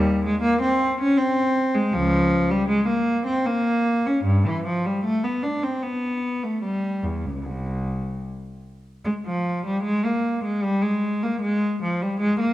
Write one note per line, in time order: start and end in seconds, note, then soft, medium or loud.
0.00 0.19 D#2 medium
0.00 0.23 G3 medium
0.26 0.43 G#3 medium
0.41 0.60 A#3 medium
0.62 0.98 C4 medium
1.01 1.18 C#4 medium
1.17 1.74 C4 medium
1.75 1.93 G#3 medium
1.93 2.45 C#2 medium
1.93 2.49 F3 medium
2.50 2.68 G3 medium
2.69 2.87 G#3 medium
2.87 3.24 A#3 medium
3.26 3.44 C4 medium
3.46 4.05 A#3 medium
4.06 4.25 C#4 medium
4.24 4.44 G2 medium
4.47 4.66 E3 medium
4.66 4.84 F3 medium
4.86 5.04 G3 medium
5.04 5.23 A3 medium
5.24 5.43 B3 medium
5.43 5.62 D4 medium
5.63 5.83 C4 medium
5.83 6.42 B3 medium
6.43 6.63 A3 medium
6.63 7.03 G3 medium
7.03 7.24 E2 medium
7.26 7.45 C#2 soft
7.45 8.26 C2 medium
9.05 9.13 G#3 medium
9.26 9.65 F3 medium
9.66 9.85 G3 medium
9.83 10.04 G#3 medium
10.04 10.44 A#3 medium
10.44 10.63 G#3 medium
10.63 10.83 G3 medium
10.82 11.22 G#3 medium
11.23 11.42 A#3 medium
11.41 11.80 G#3 medium
11.82 12.01 F3 medium
12.02 12.21 G3 medium
12.20 12.39 G#3 medium
12.39 12.53 A#3 medium